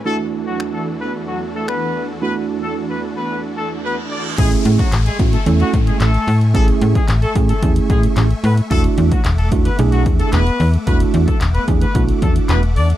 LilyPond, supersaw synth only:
\new Staff \with { instrumentName = "Supersaw synth" } { \time 4/4 \key a \major \tempo 4 = 111 << { <e, fis' a'>1~ | <e, fis' a'>1 | gis''1~ | gis''1 |
r1 | r1 | } \\ { <e d'>1~ | <e d'>1 | <a e''>1~ | <a e''>1~ |
<a e''>1~ | <a e''>1 | } >> }